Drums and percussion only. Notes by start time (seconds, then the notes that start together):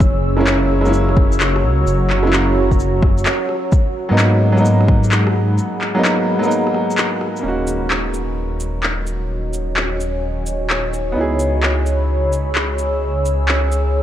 0.00 kick, shaker
0.47 clap, shaker
0.85 cross-stick, shaker
0.93 shaker
1.09 cross-stick
1.17 kick
1.32 shaker
1.40 clap, shaker
1.56 cross-stick
1.87 shaker
2.10 clap
2.33 clap, shaker
2.71 kick, shaker
2.80 shaker
3.02 kick, cross-stick
3.18 shaker
3.26 clap, shaker
3.49 cross-stick
3.72 kick, shaker
4.18 clap, shaker
4.57 cross-stick, shaker
4.65 shaker
4.81 cross-stick
4.88 kick
5.04 shaker
5.12 clap, shaker
5.27 cross-stick
5.58 shaker
5.81 clap
6.05 clap, shaker
6.43 cross-stick, shaker
6.51 shaker
6.67 cross-stick
6.74 cross-stick
6.90 shaker
6.98 clap, shaker
7.21 cross-stick
7.36 shaker
7.67 cabasa
7.90 clap
8.14 cabasa
8.60 cabasa
8.83 clap
9.07 cabasa
9.53 cabasa
9.76 clap
10.00 cabasa
10.46 cabasa
10.70 clap
10.94 cabasa
11.39 cabasa
11.63 clap
11.86 cabasa
12.33 cabasa
12.55 clap
12.79 cabasa
13.25 cabasa
13.48 clap
13.72 cabasa